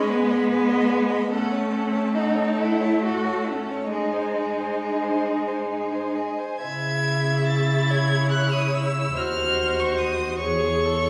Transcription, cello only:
0.00 0.12 C#4 medium
0.11 1.29 B3 medium
1.30 2.15 C#4 medium
2.14 2.59 D#4 medium
2.58 3.04 E4 medium
3.03 3.48 F#4 medium
3.47 3.90 C#4 medium
3.91 6.14 D#4 medium
6.63 9.12 C#3 medium
9.15 10.37 D#2 medium
10.40 11.10 E2 medium

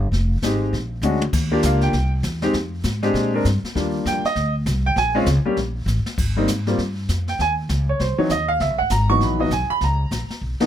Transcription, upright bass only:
0.00 0.11 G1 medium
0.12 0.41 F1 medium
0.42 0.71 G#1 medium
0.73 1.01 A#1 medium
1.02 1.31 D2 medium
1.33 1.62 D#2 medium
1.63 1.93 C#2 medium
1.93 2.23 C2 medium
2.23 2.53 E2 medium
2.53 2.83 F2 medium
2.84 3.13 G#2 medium
3.14 3.44 A#2 medium
3.45 3.62 G2 medium
3.63 muted upright bass stroke soft
3.75 4.05 D#2 medium
4.05 4.23 F2 medium
4.23 muted upright bass stroke soft
4.36 4.65 D2 medium
4.66 4.95 C2 loud
4.96 5.25 A#1 medium
5.26 5.44 C#2 loud
5.44 muted upright bass stroke soft
5.57 5.85 A#1 medium
5.86 6.04 A1 loud
6.04 muted upright bass stroke soft
6.17 6.47 G#1 medium
6.48 6.77 G#2 medium
6.78 7.08 G2 medium
7.09 7.38 F2 medium
7.39 7.68 D#2 medium
7.69 7.98 C#2 medium
7.99 8.17 C2 medium
8.18 muted upright bass stroke soft
8.30 8.59 D#2 medium
8.60 8.70 C#2 medium
8.70 8.79 B1 medium
8.80 8.89 G#1 medium
8.90 9.20 G#1 medium
9.20 9.50 A#1 medium
9.51 9.68 B1 loud
9.69 muted upright bass stroke soft
9.81 10.10 C#2 medium
10.11 10.29 A#1 medium
10.30 muted upright bass stroke soft
10.41 10.59 B1 medium
10.61 muted upright bass stroke soft

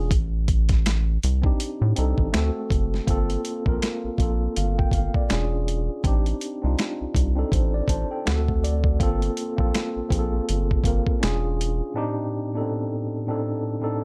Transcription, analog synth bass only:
0.00 0.13 E1 loud
0.12 1.18 A1 loud
1.24 1.53 C2 loud
1.81 1.94 A2 loud
1.98 2.14 C2 medium
2.19 2.31 A1 medium
2.35 2.51 D2 loud
2.71 3.00 F#1 medium
3.09 3.37 G1 medium
3.67 3.79 A#1 medium
4.04 4.10 A#1 soft
4.19 4.48 A#1 medium
4.57 4.86 G1 medium
4.93 5.09 G1 medium
5.32 5.89 E1 loud
6.05 6.34 A1 loud
6.64 6.76 C2 loud
7.01 7.07 C2 soft
7.15 7.44 C2 medium
7.53 7.82 A1 loud
7.89 8.05 A1 medium
8.27 9.02 D2 loud
9.01 9.30 G1 loud
9.59 9.71 A#1 medium
9.96 10.02 A#1 soft
10.11 10.41 A#1 medium
10.50 10.78 G1 medium
10.85 11.02 G1 medium
11.24 11.82 E1 loud

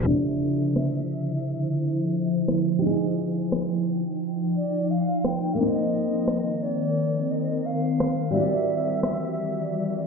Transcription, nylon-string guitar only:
0.02 2.77 F3 medium
0.02 2.78 D4 medium
0.08 2.78 E4 medium
0.08 2.81 C5 medium
2.79 5.54 D#4 medium
2.79 2.83 G4 medium
2.84 5.56 F4 medium
2.84 5.57 G#4 medium
5.55 8.29 A#3 medium
5.55 8.30 C4 medium
5.60 8.31 D#4 medium
5.60 8.33 C5 medium
8.31 10.07 G3 medium
8.31 10.07 E4 medium
8.36 10.07 F#4 medium
8.36 10.07 D5 medium

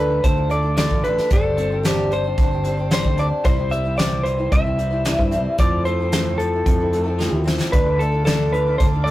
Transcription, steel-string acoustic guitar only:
0.08 0.37 D4 soft
0.08 0.36 F4 soft
0.08 0.34 A4 soft
0.35 0.49 D4 soft
0.35 0.50 F4 soft
0.35 0.49 A4 soft
0.49 0.63 A3 medium
0.49 0.64 D4 medium
0.49 0.63 F4 medium
0.49 0.61 A4 medium
0.63 0.77 D4 soft
0.63 0.77 F4 soft
0.63 0.77 A4 soft
0.77 0.90 D3 medium
0.77 0.91 A3 medium
0.77 0.91 D4 medium
0.77 0.91 F4 medium
0.77 0.90 A4 medium
0.91 1.05 D4 soft
0.91 1.05 F4 soft
0.91 1.04 A4 soft
1.04 1.31 A3 medium
1.04 1.31 D4 medium
1.04 1.32 F4 medium
1.04 1.33 A4 medium
1.31 1.56 G3 medium
1.31 1.57 D4 medium
1.31 1.58 G4 medium
1.31 1.59 C5 medium
1.57 1.70 G3 soft
1.57 1.71 D4 soft
1.57 1.71 G4 medium
1.57 1.69 C5 medium
1.70 1.83 D4 soft
1.70 1.84 G4 soft
1.70 1.84 C5 medium
1.83 2.24 G3 medium
1.83 2.24 D4 medium
1.83 2.25 G4 medium
1.83 2.23 C5 medium
2.24 2.53 D4 soft
2.24 2.52 G4 soft
2.24 2.50 C5 soft
2.51 2.64 D4 soft
2.51 2.65 G4 soft
2.51 2.64 C5 medium
2.64 2.78 G3 medium
2.64 2.78 D4 medium
2.64 2.78 G4 medium
2.64 2.76 C5 medium
2.77 2.91 D4 soft
2.77 2.90 G4 soft
2.77 2.91 C5 soft
2.91 3.04 G3 medium
2.91 3.05 D4 medium
2.91 3.05 G4 medium
2.91 3.03 C5 medium
3.04 3.18 D4 soft
3.04 3.19 G4 soft
3.04 3.18 C5 soft
3.19 3.44 G3 medium
3.19 3.45 D4 medium
3.19 3.46 G4 medium
3.19 3.46 C5 medium
3.44 3.58 C3 medium
3.44 3.58 E3 medium
3.44 3.58 G3 medium
3.44 3.58 C4 medium
3.44 3.56 E4 medium
3.44 3.55 C5 medium
3.57 3.68 G3 soft
3.57 3.70 C4 soft
3.57 3.71 E4 soft
3.57 3.71 C5 soft
3.70 3.84 G3 medium
3.70 3.84 C4 medium
3.70 3.84 E4 soft
3.70 3.82 C5 medium
3.84 3.97 G3 soft
3.84 3.97 C4 soft
3.84 3.98 E4 soft
3.84 3.98 C5 soft
3.97 4.38 C3 medium
3.97 4.38 E3 medium
3.97 4.38 G3 medium
3.97 4.39 C4 medium
3.97 4.38 E4 medium
3.97 4.36 C5 medium
4.37 4.66 G3 soft
4.37 4.66 C4 soft
4.37 4.65 E4 soft
4.37 4.63 C5 soft
4.64 4.77 G3 soft
4.64 4.78 C4 soft
4.64 4.79 E4 soft
4.64 4.78 C5 soft
4.78 4.92 G3 medium
4.78 4.91 C4 medium
4.78 4.90 E4 medium
4.78 4.89 C5 medium
4.90 5.05 G3 soft
4.90 5.05 C4 soft
4.90 5.05 E4 soft
4.90 5.05 C5 soft
5.05 5.19 C3 medium
5.05 5.19 E3 medium
5.05 5.19 G3 medium
5.05 5.19 C4 medium
5.05 5.19 E4 medium
5.05 5.18 C5 medium
5.19 5.30 G3 soft
5.19 5.32 C4 soft
5.19 5.33 E4 medium
5.19 5.32 C5 medium
5.31 5.58 G3 medium
5.31 5.59 C4 medium
5.31 5.59 E4 medium
5.31 5.60 C5 medium
5.59 5.86 F3 medium
5.59 5.85 A3 medium
5.59 5.86 C4 medium
5.59 5.86 E4 medium
5.59 5.87 A4 medium
5.86 5.99 A3 soft
5.86 6.00 C4 soft
5.86 6.00 E4 medium
5.86 5.99 A4 medium
6.00 6.12 C4 soft
6.00 6.13 E4 soft
6.00 6.13 A4 soft
6.13 6.53 F3 medium
6.13 6.53 A3 medium
6.13 6.53 C4 medium
6.13 6.53 E4 medium
6.13 6.52 A4 medium
6.53 6.81 C4 soft
6.53 6.81 E4 soft
6.53 6.79 A4 soft
6.80 6.93 C4 soft
6.80 6.94 E4 soft
6.80 6.93 A4 soft
6.93 7.06 A3 medium
6.93 7.07 C4 medium
6.93 7.04 E4 medium
6.93 7.02 A4 medium
7.04 7.19 E4 soft
7.04 7.18 A4 medium
7.08 7.19 C4 soft
7.19 7.32 F3 medium
7.19 7.32 A3 medium
7.19 7.33 C4 medium
7.19 7.32 E4 medium
7.19 7.30 A4 medium
7.31 7.46 E4 soft
7.31 7.45 A4 soft
7.35 7.44 C4 soft
7.44 7.71 A3 medium
7.44 7.73 C4 medium
7.44 7.73 E4 medium
7.44 7.73 A4 medium
7.72 7.86 D3 medium
7.72 7.86 A3 medium
7.72 7.86 D4 medium
7.72 7.86 F4 medium
7.72 7.84 A4 medium
7.85 7.99 D4 soft
7.85 8.00 F4 soft
7.85 7.99 A4 soft
7.99 8.13 A3 soft
7.99 8.13 D4 soft
7.99 8.13 F4 soft
7.99 8.11 A4 medium
8.12 8.25 D4 soft
8.12 8.26 F4 soft
8.12 8.26 A4 soft
8.25 8.66 D3 medium
8.25 8.66 A3 medium
8.25 8.66 D4 medium
8.25 8.67 F4 medium
8.25 8.66 A4 medium
8.67 8.95 D4 soft
8.67 8.93 F4 soft
8.67 8.92 A4 soft
8.93 9.07 D4 soft
8.93 9.07 F4 soft
8.93 9.07 A4 soft
9.06 9.11 A3 medium

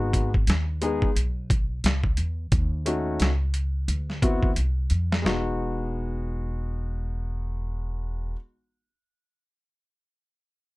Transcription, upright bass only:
0.00 0.44 G#1 loud
0.47 0.99 D#2 medium
1.02 muted upright bass stroke soft
1.16 1.80 B1 medium
1.84 2.16 C#2 medium
2.18 2.50 E2 medium
2.52 3.17 D#2 medium
3.20 3.85 C#2 medium
3.88 4.53 D2 medium
4.57 4.89 C2 medium
4.91 5.23 F2 medium
5.25 8.33 E1 medium

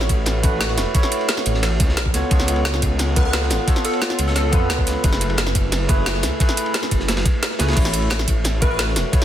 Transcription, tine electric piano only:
0.00 0.43 A3 medium
0.00 0.43 E4 medium
0.00 0.44 F#4 medium
0.00 0.45 B4 loud
0.00 0.96 C#5 medium
0.43 0.92 A3 medium
0.43 0.93 E4 medium
0.43 0.93 F#4 medium
0.43 0.93 B4 medium
0.94 1.78 A3 medium
0.94 1.78 E4 medium
0.94 1.78 F#4 medium
0.94 1.79 C#5 medium
2.13 2.29 B3 medium
2.13 2.29 F4 medium
2.13 2.29 A4 medium
2.13 2.29 C#5 medium
2.30 3.14 B3 medium
2.30 3.14 F4 medium
2.30 3.15 A4 medium
2.30 3.15 C#5 medium
3.16 3.65 B3 medium
3.16 3.65 F4 medium
3.16 3.66 A4 medium
3.16 3.66 B4 medium
3.67 4.50 B3 medium
3.67 4.51 F4 medium
3.67 4.51 A4 medium
3.67 4.51 C#5 medium
4.52 5.01 B3 medium
4.52 5.02 F4 medium
4.52 5.02 A4 medium
4.52 5.02 B4 loud
5.03 5.87 A3 medium
5.03 5.87 E4 medium
5.03 5.87 G#4 medium
5.03 5.88 B4 medium
5.88 6.38 A3 medium
5.88 6.38 E4 medium
5.88 6.38 G#4 medium
5.88 6.39 B4 medium
6.39 7.23 A3 medium
6.39 7.23 E4 medium
6.39 7.24 G#4 medium
6.39 7.24 B4 medium
7.59 7.74 A3 medium
7.59 7.75 E4 medium
7.59 7.75 G#4 medium
7.59 7.75 B4 medium
7.76 8.59 A3 medium
7.76 8.60 E4 medium
7.76 8.60 F#4 medium
7.76 8.60 C#5 medium
8.61 9.11 A3 medium
8.61 9.11 E4 medium
8.61 9.11 F#4 medium
8.61 9.12 B4 loud
9.12 9.25 A3 medium
9.12 9.25 E4 medium
9.12 9.25 F#4 medium
9.12 9.25 C#5 medium

